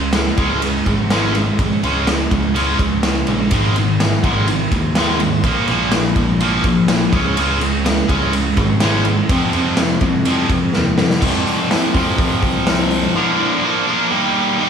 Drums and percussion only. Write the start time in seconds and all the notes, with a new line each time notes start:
0.13 snare, ride
0.37 kick, ride
0.62 ride
0.86 kick, ride
1.10 snare, ride
1.35 ride
1.59 kick, ride
1.83 ride
2.07 snare, ride
2.31 kick, ride
2.56 ride
2.79 kick, ride
3.03 snare, ride
3.27 ride
3.51 kick, ride
3.76 ride
4.00 snare, ride
4.24 kick, ride
4.48 ride
4.71 kick, ride
4.95 snare, ride
5.20 ride
5.44 kick, ride
5.68 ride
5.92 snare, ride
6.16 kick, ride
6.40 ride
6.64 kick, ride
6.88 snare, ride
7.13 kick, ride
7.37 ride
7.61 ride
7.86 snare, ride
8.09 kick, ride
8.33 ride
8.57 kick, ride
8.80 snare, ride
9.05 ride
9.29 kick, ride
9.53 ride
9.77 snare, ride
10.01 kick, ride
10.25 ride
10.50 kick, ride
10.73 snare
10.98 snare
11.10 snare
11.22 kick, crash
11.47 open hi-hat
11.71 snare, open hi-hat
11.95 kick, open hi-hat
12.18 kick, open hi-hat
12.43 kick, open hi-hat
12.67 snare, open hi-hat
12.91 open hi-hat